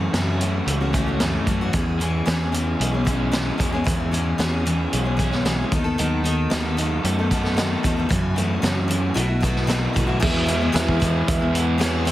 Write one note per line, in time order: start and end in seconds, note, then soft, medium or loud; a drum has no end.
0.00 0.93 F#2 medium
0.00 0.13 E3 medium
0.00 0.15 A3 medium
0.00 0.14 C#4 medium
0.00 0.15 F#4 medium
0.13 0.60 F#2 medium
0.13 0.41 F#2 medium
0.13 0.41 C#3 medium
0.13 0.39 E3 medium
0.13 0.40 A3 medium
0.13 0.41 C#4 medium
0.13 0.42 F#4 medium
0.13 snare loud
0.13 closed hi-hat medium
0.41 0.80 E3 medium
0.41 0.81 A3 medium
0.41 0.80 C#4 medium
0.41 0.79 F#4 medium
0.41 closed hi-hat medium
0.66 1.37 C#2 medium
0.66 1.19 A3 medium
0.66 closed hi-hat medium
0.80 0.92 E3 soft
0.80 0.93 A3 soft
0.80 0.94 C#4 medium
0.80 0.94 F#4 soft
0.93 1.07 E3 medium
0.93 1.07 A3 medium
0.93 1.07 C#4 medium
0.93 1.05 F#4 medium
0.93 kick medium
0.93 closed hi-hat medium
1.06 1.20 E3 soft
1.06 1.20 A3 soft
1.06 1.20 C#4 soft
1.06 1.20 F#4 soft
1.20 1.47 F#2 medium
1.20 1.47 C#3 medium
1.20 1.46 E3 medium
1.20 1.47 A3 medium
1.20 1.47 C#4 medium
1.20 1.48 F#4 medium
1.20 snare medium
1.20 closed hi-hat medium
1.47 1.70 F#2 medium
1.47 1.60 E3 medium
1.47 1.61 A3 medium
1.47 1.61 C#4 medium
1.47 1.60 F#4 medium
1.47 kick medium
1.47 closed hi-hat medium
1.61 1.72 E3 soft
1.61 1.73 A3 soft
1.61 1.73 C#4 soft
1.61 1.74 F#4 medium
1.73 3.06 E2 medium
1.73 2.20 E2 medium
1.73 1.99 E3 medium
1.73 1.99 B3 medium
1.73 2.00 C#4 medium
1.73 2.01 G#4 medium
1.73 kick loud
1.73 closed hi-hat medium
2.00 2.24 E3 medium
2.00 2.25 B3 medium
2.00 2.26 C#4 medium
2.00 2.26 G#4 medium
2.00 closed hi-hat medium
2.26 2.73 E2 medium
2.26 2.39 E3 medium
2.26 2.40 B3 medium
2.26 2.39 C#4 medium
2.26 2.38 G#4 medium
2.26 snare loud
2.26 closed hi-hat medium
2.39 2.52 B3 soft
2.39 2.52 C#4 soft
2.39 2.53 G#4 soft
2.52 2.92 E3 medium
2.52 2.93 B3 medium
2.52 2.93 C#4 medium
2.52 2.91 G#4 medium
2.52 closed hi-hat medium
2.79 3.50 B1 medium
2.79 3.31 G#3 medium
2.79 closed hi-hat medium
2.92 3.05 B3 soft
2.92 3.05 C#4 soft
2.92 3.06 G#4 soft
3.05 3.30 E3 medium
3.05 3.31 B3 medium
3.05 3.31 C#4 medium
3.05 3.32 G#4 medium
3.05 kick medium
3.05 closed hi-hat medium
3.32 3.57 E3 medium
3.32 4.65 G#3 medium
3.32 3.57 B3 medium
3.32 3.58 C#4 medium
3.32 3.59 G#4 medium
3.32 snare loud
3.32 closed hi-hat medium
3.58 3.83 E2 medium
3.58 3.72 E3 medium
3.58 3.72 B3 medium
3.58 3.73 C#4 medium
3.58 3.71 G#4 medium
3.58 kick medium
3.58 closed hi-hat medium
3.72 3.84 B3 soft
3.72 3.84 C#4 soft
3.72 3.84 G#4 medium
3.84 5.19 E2 medium
3.84 4.33 E2 medium
3.84 4.10 E3 medium
3.84 4.11 B3 medium
3.84 4.12 C#4 medium
3.84 4.12 G#4 medium
3.84 kick loud
3.84 closed hi-hat medium
4.11 4.37 E3 medium
4.11 4.38 B3 medium
4.11 4.38 C#4 medium
4.11 4.39 G#4 medium
4.11 closed hi-hat medium
4.38 4.86 E2 medium
4.38 4.52 E3 medium
4.38 4.52 B3 medium
4.38 4.51 C#4 medium
4.38 4.50 G#4 medium
4.38 snare loud
4.38 closed hi-hat medium
4.52 4.65 B3 soft
4.52 4.66 C#4 soft
4.52 4.65 G#4 soft
4.66 5.05 E3 medium
4.66 5.05 B3 medium
4.66 5.04 C#4 medium
4.66 5.03 G#4 medium
4.66 closed hi-hat medium
4.93 5.63 B1 medium
4.93 5.44 G#3 medium
4.93 closed hi-hat medium
5.04 5.16 B3 soft
5.04 5.18 C#4 soft
5.04 5.18 G#4 soft
5.17 5.31 E3 medium
5.17 5.31 B3 medium
5.17 5.31 C#4 medium
5.17 5.30 G#4 medium
5.17 kick medium
5.17 closed hi-hat medium
5.31 5.44 B3 soft
5.31 5.45 C#4 soft
5.31 5.45 G#4 soft
5.31 snare soft
5.45 5.71 E3 medium
5.45 5.72 G#3 medium
5.45 5.71 B3 medium
5.45 5.72 C#4 medium
5.45 5.72 G#4 medium
5.45 snare medium
5.45 closed hi-hat medium
5.72 5.95 D#2 medium
5.72 5.97 D#3 medium
5.72 5.85 F#3 medium
5.72 5.85 B3 medium
5.72 5.84 D#4 medium
5.72 5.83 A4 medium
5.72 kick medium
5.72 closed hi-hat medium
5.84 5.97 B3 soft
5.84 5.98 D#4 medium
5.84 5.98 A4 medium
5.98 6.46 D#2 medium
5.98 6.25 D#3 medium
5.98 6.23 F#3 medium
5.98 6.24 B3 medium
5.98 6.24 D#4 medium
5.98 6.25 A4 medium
5.98 closed hi-hat medium
6.24 6.76 D#3 medium
6.24 6.50 F#3 medium
6.24 6.50 B3 medium
6.24 6.50 D#4 medium
6.24 6.51 A4 medium
6.24 closed hi-hat medium
6.50 6.98 D#2 medium
6.50 6.64 D#3 medium
6.50 6.65 F#3 medium
6.50 6.65 B3 medium
6.50 6.64 D#4 medium
6.50 6.63 A4 medium
6.50 snare loud
6.50 closed hi-hat medium
6.64 6.77 B3 soft
6.64 6.78 D#4 soft
6.64 6.78 A4 soft
6.77 7.82 D#3 medium
6.77 7.17 F#3 medium
6.77 7.18 B3 medium
6.77 7.18 D#4 medium
6.77 7.17 A4 medium
6.77 closed hi-hat medium
7.03 7.74 F#2 medium
7.03 7.56 A3 medium
7.03 closed hi-hat medium
7.19 7.30 B3 soft
7.19 7.32 D#4 soft
7.19 7.32 A4 medium
7.31 7.45 F#3 medium
7.31 7.45 B3 medium
7.31 7.44 D#4 medium
7.31 7.42 A4 medium
7.31 kick medium
7.31 closed hi-hat medium
7.43 7.56 B3 soft
7.43 7.57 D#4 soft
7.43 7.57 A4 soft
7.43 snare soft
7.57 7.84 D#3 medium
7.57 7.82 F#3 medium
7.57 8.10 A3 medium
7.57 7.83 B3 medium
7.57 7.84 D#4 medium
7.57 7.85 A4 medium
7.57 snare loud
7.57 closed hi-hat medium
7.83 8.08 E2 medium
7.83 8.10 D#3 medium
7.83 7.97 F#3 medium
7.83 7.97 B3 medium
7.83 7.97 D#4 medium
7.83 7.95 A4 medium
7.83 kick medium
7.83 closed hi-hat medium
7.97 8.09 B3 soft
7.97 8.10 D#4 soft
7.97 8.10 A4 medium
8.09 8.36 F#2 medium
8.09 8.57 F#2 medium
8.09 8.36 C#3 medium
8.09 8.35 E3 medium
8.09 8.36 A3 medium
8.09 8.37 C#4 medium
8.09 8.37 F#4 medium
8.09 kick loud
8.09 closed hi-hat medium
8.36 8.62 E3 medium
8.36 8.62 A3 medium
8.36 8.62 C#4 medium
8.36 8.62 F#4 medium
8.36 closed hi-hat medium
8.62 8.76 F#2 medium
8.62 9.10 F#2 medium
8.62 8.76 C#3 medium
8.62 8.76 E3 medium
8.62 8.76 A3 medium
8.62 8.74 C#4 medium
8.62 8.73 F#4 medium
8.62 snare loud
8.62 closed hi-hat medium
8.75 8.87 E3 soft
8.75 8.87 A3 soft
8.75 8.88 C#4 soft
8.75 8.89 F#4 soft
8.88 9.14 E3 medium
8.88 9.14 A3 medium
8.88 9.15 C#4 medium
8.88 9.14 F#4 medium
8.88 closed hi-hat medium
9.14 9.86 B1 medium
9.14 9.29 B2 medium
9.14 9.29 F#3 medium
9.14 9.29 A3 medium
9.14 9.27 E4 medium
9.14 9.26 F#4 medium
9.14 closed hi-hat medium
9.27 9.40 A3 soft
9.27 9.41 E4 soft
9.27 9.42 F#4 medium
9.40 9.66 F#3 medium
9.40 9.67 A3 medium
9.40 10.22 B3 medium
9.40 9.67 E4 medium
9.40 9.68 F#4 medium
9.40 kick medium
9.40 closed hi-hat medium
9.56 snare soft
9.67 9.95 B2 medium
9.67 9.92 F#3 medium
9.67 9.93 A3 medium
9.67 9.94 E4 medium
9.67 9.95 F#4 medium
9.67 snare medium
9.67 closed hi-hat medium
9.93 10.19 B1 medium
9.93 10.21 E3 medium
9.93 10.08 F#3 medium
9.93 10.08 A3 medium
9.93 10.06 E4 medium
9.93 10.05 F#4 medium
9.93 kick medium
9.93 closed hi-hat medium
10.07 10.20 A3 soft
10.07 10.19 E4 medium
10.07 10.21 F#4 medium
10.20 11.79 E2 medium
10.20 10.69 E2 medium
10.20 11.01 B2 medium
10.20 10.45 E3 medium
10.20 10.74 G#3 loud
10.20 10.46 B3 medium
10.20 10.47 E4 medium
10.20 10.48 G#4 medium
10.20 10.65 G#4 medium
10.20 10.65 B4 medium
10.20 10.65 E5 medium
10.20 kick loud
10.20 crash loud
10.46 10.61 E3 medium
10.46 10.61 B3 medium
10.46 10.61 E4 medium
10.46 10.59 G#4 medium
10.46 closed hi-hat medium
10.61 10.72 B3 soft
10.61 10.72 E4 soft
10.61 10.73 G#4 medium
10.72 11.21 E2 loud
10.72 10.99 E3 medium
10.72 11.54 G#3 medium
10.72 11.00 B3 medium
10.72 11.00 E4 medium
10.72 11.01 G#4 loud
10.72 11.18 G#4 medium
10.72 11.18 B4 medium
10.72 11.18 E5 medium
10.72 snare loud
10.72 closed hi-hat medium
10.88 kick medium
11.00 11.40 E3 medium
11.00 11.41 B3 medium
11.00 11.39 E4 medium
11.00 11.38 G#4 medium
11.00 kick medium
11.00 closed hi-hat medium
11.28 12.12 E2 medium
11.28 11.71 G#4 medium
11.28 11.71 B4 medium
11.28 11.71 E5 medium
11.28 kick loud
11.28 closed hi-hat loud
11.39 11.78 B3 soft
11.39 11.78 E4 medium
11.39 11.79 G#4 medium
11.53 11.79 E3 medium
11.53 11.79 G#3 medium
11.53 11.80 B3 medium
11.53 11.80 E4 medium
11.53 closed hi-hat medium
11.78 12.12 E2 medium
11.78 12.12 B2 medium
11.78 12.04 E3 medium
11.78 12.06 G#3 medium
11.78 12.05 B3 medium
11.78 12.06 E4 medium
11.78 12.12 G#4 medium
11.78 12.07 G#4 medium
11.78 12.12 B4 medium
11.78 12.12 C#5 loud
11.78 snare loud
11.78 closed hi-hat medium
12.05 12.12 E3 medium
12.05 12.12 G#3 medium
12.05 12.12 B3 medium
12.05 12.12 E4 medium
12.05 12.12 G#4 medium
12.05 closed hi-hat medium